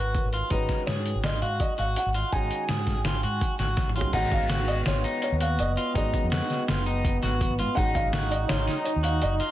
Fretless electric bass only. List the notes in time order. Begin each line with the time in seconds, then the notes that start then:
Already playing: G#1
0.25 G#1
0.51 G#1
0.88 G#2
1.15 G#1
1.42 G#2
1.79 G#1
2.06 G#1
2.33 G#1
2.69 G#2
2.97 G#1
3.24 G#2
3.59 G#1
3.87 G#1
4.13 G#1
4.42 G#1
4.87 G#1
5.32 D#2
5.59 F#1
5.95 G#1
6.24 F2
6.69 F#1
7.23 G#1
7.50 G#1
7.60 G#2
7.77 G#1
8.05 G#1
8.51 G#1
8.96 D#2
9.23 F#1